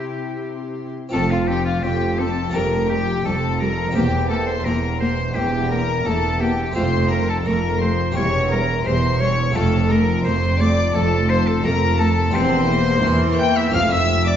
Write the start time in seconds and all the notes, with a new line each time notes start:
Already playing: C3 C4 E4 G4 C6
1.09 F2 C4 F4 A4 A5
1.13 F1 F2 C4 A4
1.31 F4 F5
1.48 C4 G4 G5
1.65 F4 F5
1.83 F1 F2 C4 G4 G5
2.18 C4 A4 A5
2.50 F2 A#3 D4 G4
2.54 F1 F2 G3 A#4 A#5
2.89 G3 G4 G5
3.24 F1 F2 G3 A4 A5
3.60 G3 A#4 A#5
3.91 E2 A#3 C4 G4
3.95 E1 E2 A#3 G4 G5
4.30 A#3 A4 A5
4.47 C5 C6
4.64 E1 E2 A#3 A#4 A#5
5.00 A#3 C5 C6
5.35 E1 E2 A#3 G4 G5
5.70 A#3 A#4 A#5
6.05 E1 E2 A#3 A4 A5
6.40 A#3 G4 G5
6.72 A3 C4 F4 C5 C6
6.76 F1 F2 A3
7.11 A3 A#4 A#5
7.29 A4 A5
7.45 F1 F2 A3 A#4 A#5
7.80 A3 C5 C6
8.11 A#3 G4
8.16 E1 E2 G3 C#5 C#6
8.50 G3 A#4 A#5
8.85 E1 E2 G3 C5 C6
9.20 G3 C#5 C#6
9.51 F1 A3 C4 F4 A5
9.55 F2 A3 A4
9.89 A3 A#4 A#5
10.24 F1 F2 A3 C5 C6
10.59 A3 D5 D6
10.94 F1 F2 A3 A4 A5
11.29 A3 C5 C6
11.47 A4 A5
11.63 F1 F2 A3 A#4 A#5
11.99 A3 A4 A5
12.30 E1 E2 A#3 C4 G4 C6
12.35 C5
12.69 A#3
13.03 E2 E3
13.39 G5 G6
13.56 E5 E6
13.70 A3 C4 F4 F6
13.74 F1 F2 A3 F5
13.91 E5 E6
14.27 D5 D6